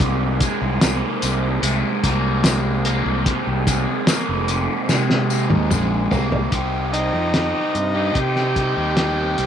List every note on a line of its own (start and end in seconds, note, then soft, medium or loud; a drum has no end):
0.00 0.39 C2 medium
0.00 1.22 C3 medium
0.00 0.42 G#3 medium
0.00 0.82 A#3 medium
0.00 6.49 C4 medium
0.00 6.49 D#4 medium
0.00 6.49 G#4 medium
0.00 6.49 A#4 medium
0.00 6.49 C5 medium
0.00 kick loud
0.00 tambourine soft
0.41 1.62 G#3 medium
0.41 kick medium
0.41 closed hi-hat medium
0.41 tambourine medium
0.62 0.81 C2 medium
0.81 1.01 C2 medium
0.81 2.03 A#3 medium
0.81 snare loud
0.81 closed hi-hat medium
0.81 tambourine medium
1.22 1.61 C2 medium
1.22 3.26 C3 medium
1.22 closed hi-hat medium
1.22 tambourine medium
1.63 1.82 C2 loud
1.63 2.43 G#3 medium
1.63 closed hi-hat medium
1.63 tambourine medium
2.04 3.02 C2 medium
2.04 2.84 A#3 medium
2.04 kick medium
2.04 closed hi-hat medium
2.04 tambourine medium
2.44 3.66 G#3 medium
2.44 snare loud
2.44 closed hi-hat medium
2.44 tambourine medium
2.85 4.07 A#3 medium
2.85 closed hi-hat medium
2.85 tambourine soft
3.06 3.25 C2 medium
3.26 4.47 C3 medium
3.26 kick medium
3.26 closed hi-hat medium
3.47 3.85 C2 medium
3.67 4.88 G#3 medium
3.67 kick medium
3.67 closed hi-hat medium
3.67 tambourine medium
4.07 5.29 A#3 medium
4.07 snare loud
4.07 closed hi-hat medium
4.07 tambourine loud
4.29 4.67 F1 medium
4.48 6.51 C3 medium
4.48 closed hi-hat medium
4.48 tambourine medium
4.89 5.46 C3 loud
4.89 5.70 G#3 medium
4.89 snare medium
4.89 tambourine medium
5.10 snare medium
5.30 6.10 A#3 medium
5.30 tambourine medium
5.50 5.69 D#2 medium
5.50 high tom medium
5.71 6.08 A#1 medium
5.71 6.53 G#3 medium
5.71 mid tom medium
5.71 tambourine medium
6.11 6.49 C2 medium
6.11 6.52 A#3 medium
6.11 floor tom medium
6.11 tambourine soft
6.32 floor tom medium
6.52 7.10 C2 medium
6.52 7.33 C3 medium
6.52 6.93 G3 medium
6.52 6.93 C4 medium
6.52 6.94 D#4 medium
6.52 6.95 G4 medium
6.52 9.46 A#4 medium
6.52 9.46 C5 medium
6.52 9.46 D#5 medium
6.52 9.46 G5 medium
6.52 kick medium
6.52 closed hi-hat medium
6.93 7.34 G3 medium
6.93 7.34 C4 medium
6.93 8.19 D#4 medium
6.93 7.35 D#4 medium
6.93 7.35 G4 medium
6.93 closed hi-hat medium
7.14 7.52 F2 medium
7.33 8.97 C3 medium
7.33 7.75 G3 medium
7.33 7.56 C4 medium
7.33 7.55 D#4 medium
7.33 7.54 G4 medium
7.33 snare loud
7.33 closed hi-hat medium
7.54 7.76 C4 medium
7.54 7.76 D#4 medium
7.54 7.76 G4 medium
7.75 8.13 G2 medium
7.75 muted overdriven electric guitar stroke soft
7.75 closed hi-hat soft
7.96 8.37 C4 soft
7.96 8.36 D#4 medium
7.96 8.36 G4 medium
8.14 8.73 C3 medium
8.14 9.46 G4 medium
8.14 kick loud
8.14 closed hi-hat medium
8.36 8.57 C4 medium
8.36 8.57 D#4 medium
8.36 8.59 G4 medium
8.36 snare soft
8.56 8.97 G3 medium
8.56 8.78 C4 soft
8.56 8.77 D#4 medium
8.56 8.76 G4 medium
8.56 kick medium
8.56 closed hi-hat soft
8.77 9.34 D#2 medium
8.77 8.97 C4 medium
8.77 8.97 D#4 soft
8.77 8.99 G4 medium
8.97 9.46 C3 medium
8.97 9.38 G3 medium
8.97 9.19 C4 medium
8.97 9.18 D#4 medium
8.97 9.17 G4 medium
8.97 snare medium
8.97 closed hi-hat medium
9.18 9.37 C4 soft
9.18 9.38 D#4 medium
9.18 9.39 G4 medium
9.38 9.46 C2 loud
9.38 9.46 G3 medium
9.38 9.46 C4 medium
9.38 9.46 D#4 medium
9.38 9.46 G4 medium
9.38 closed hi-hat medium